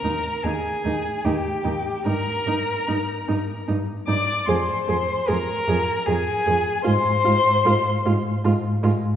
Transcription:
Already playing: A#4 A#5
0.04 D#2 D#4
0.43 D#2 D#4 G#4 G#5
0.85 D#2 D#4
1.24 D#2 D#4 G4 G5
1.64 D#2 D#4
2.05 G2 D#4 A#4 A#5
2.46 G2 D#4
2.88 G2 D#4
3.28 G2 D#4
3.68 G2 D#4
4.07 G2 D#4 D5 D6
4.45 F2 G#4 C5 C6
4.87 F2 G#4
5.27 F2 G#4 A#4 A#5
5.68 F2 G#4
6.06 F2 G#4 G#5
6.46 F2 G#4
6.84 G#2 F4 C5 C6
7.24 G#2 F4
7.65 G#2 F4
8.06 G#2 F4
8.45 G#2 F4
8.83 G#2 F4

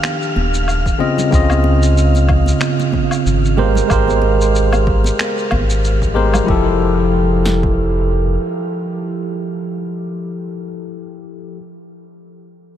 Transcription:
Already playing: D#3 D4 G4 F5 F6
0.03 finger snap, high conga, shaker
0.22 shaker
0.36 D#1, high conga
0.54 shaker
0.68 low woodblock, shaker
0.86 kick, shaker
0.98 C#3 C4 F4 D#5, high conga
1.18 low conga, shaker
1.31 C#2 C#3 C4 F4, kick, shaker
1.35 D#5
1.50 high conga, low woodblock, shaker
1.64 muted conga
1.83 shaker
1.97 shaker
2.15 muted conga, shaker
2.29 kick, low woodblock
2.46 muted conga, shaker
2.61 finger snap, high conga, shaker
2.80 muted conga, shaker
2.92 kick, high conga
3.11 low woodblock, shaker
3.26 G#1, shaker
3.45 shaker
3.57 G#3 G4 A#4 C5, high conga
3.75 low conga, shaker
3.88 G#1 G#3 G4 A#4, kick, low woodblock, shaker
3.92 C5
4.08 high conga, shaker
4.22 muted conga
4.41 shaker
4.55 shaker
4.73 muted conga, low woodblock, shaker
4.87 kick
5.04 muted conga, shaker
5.19 finger snap, high conga, shaker
5.38 shaker
5.51 G#1, kick, high conga, low woodblock
5.70 shaker
5.85 shaker
6.02 kick, shaker
6.14 G#3 G4 A#4 C5, high conga
6.34 low conga, low woodblock, shaker
6.44 F3 E4
6.48 F1 G4 A4, kick
7.46 snare
7.63 kick

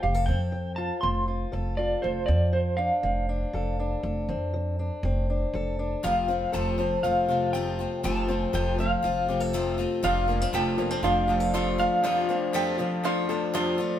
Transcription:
Already playing: C4
0.03 F1 F2 G4 F5
0.14 A4
0.26 F2 C4 G5
0.52 F3
0.76 F4 A5
1.01 F1 C3 C4 C6
1.28 F4
1.52 F1 F3 A4
1.77 F4 D5
2.02 F1 F2 A4 C5
2.26 F2 C4 D5
2.53 F3 C5
2.77 D4 F5
3.03 F1 F2 C4
3.29 D4
3.53 F1 F3 A4
3.79 D4
4.03 F1 F2 A4
4.29 F2 C4
4.54 F3
4.79 D4
5.03 F1 F2 C4
5.30 D4
5.54 F1 F3 A4
5.79 D4
6.03 F1 F2 C3 F3 A3 C4 F4 F5
6.28 F3 A3 C4 F4
6.52 F1 F2 C3 F3 A3 C4 F4 A4 A5
6.78 F3 A3 C4 F4
7.03 F1 F3 A3 C4 F4 F5
7.28 C3 F3 A3 C4 F4 A4
7.53 F2 C3 F3 A3 C4 F4 G5
7.79 F3 A3 C4 F4
8.03 F1 F2 C3 F3 A3 C4 F4 A5
8.28 F3 A3 C4 F4
8.53 F1 F2 C3 F3 A3 C4 F4 A4 G5
8.78 F3 A3 C4 F4 F5
9.03 F1 F3 A3 C4 F4
9.28 C3 F3 A3 C4 F4 G4
9.40 A4 E5
9.53 F2 C3 F3 A3 C4 F4
9.78 F3 A3 C4 F4
10.03 F1 F2 C3 F3 A3 D4 F4 A4 C5 F5
10.28 F3 A3 A#3 D4 F4
10.41 C4
10.53 F1 F2 C3 F3 A3 D4 F4 G4 A4 C5 A5
10.78 F3 A3 A#3 D4 F4
10.91 C4
11.03 F1 F3 A3 D4 F4 A4 C5 F5
11.27 F2 F3 A3 D4 F4 G4 A4 C5
11.40 A4
11.53 F2 C3 F3 A3 D4 F4 A4 C5
11.78 F3 A3 D4 F4 F5
12.02 F1 F2 C3 F3 A3 D4 F4 A4 C5
12.29 F3 A3 C4 D4 F4
12.53 F2 C3 F3 A3 D4 F4 G4 A4 C5
12.78 F3 A3 C4 D4 F4
13.03 F3 A3 D4 F4 A4 C5
13.28 F2 F3 A3 D4 F4 A4 C5
13.53 F2 C3 F3 A3 D4 F4 A4 C5
13.78 F3 A3 D4 F4

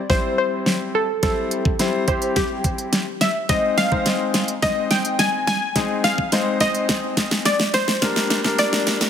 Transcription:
0.09 G3 C4 E4 C5, kick, snare
0.38 C5
0.66 snare
0.95 A4
1.23 G3 C4 E4 A4 C5, kick, snare, closed hi-hat
1.51 closed hi-hat
1.65 kick
1.79 G3 C4 E4 C5, snare, closed hi-hat
2.08 G3 C4 E4 G4 C5, kick, closed hi-hat
2.22 closed hi-hat
2.36 G4, kick, snare, closed hi-hat
2.64 kick, closed hi-hat
2.78 closed hi-hat
2.93 snare, closed hi-hat
3.21 E5, snare, closed hi-hat
3.49 G#3 C4 D#4 C5 D#5, kick, snare, closed hi-hat
3.78 F5, snare, closed hi-hat
3.91 G#3 C4 D#4 C5, kick
4.06 snare, closed hi-hat
4.34 snare, closed hi-hat
4.48 closed hi-hat
4.62 G#3 C4 D#4 D#5, kick, snare, closed hi-hat
4.91 G5, snare, closed hi-hat
5.05 closed hi-hat
5.19 G#5, snare, closed hi-hat
5.47 G#5, snare, closed hi-hat
5.75 G#3 C4 D#4 G#4, kick, snare, closed hi-hat
6.04 F5, snare, closed hi-hat
6.18 kick
6.32 G#3 C4 D#4 C5, snare, closed hi-hat
6.60 G#3 C4 D#4 C5 D#5, kick, snare, closed hi-hat
6.75 closed hi-hat
6.89 kick, snare, closed hi-hat
7.17 kick, snare, closed hi-hat
7.31 snare, closed hi-hat
7.45 D5, snare, closed hi-hat
7.60 snare
7.74 C5, snare, closed hi-hat
7.88 snare
8.02 G3 A#3 D4 A#4, kick, snare, closed hi-hat
8.16 snare
8.30 snare, closed hi-hat
8.44 G3 A#3 D4 A#4, kick, snare
8.59 D5, snare, closed hi-hat
8.73 snare
8.87 snare, closed hi-hat
9.01 snare, closed hi-hat

